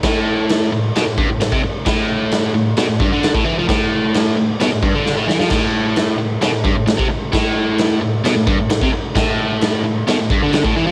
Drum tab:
CC |x---x---x---x---|x---x---x---x---|x---x---x-------|x---x---x---x---|
SD |o---o---o---o---|o---o---o---o---|o---o---o---o-oo|o---o---o---o---|
BD |o---------o--o--|o---------o--o--|o---------o-----|o---------o--o--|

CC |x---x---x---x---|x---x---x---x---|
SD |o---o---o---o---|o---o---o---o---|
BD |o---------o--o--|o---------o--o--|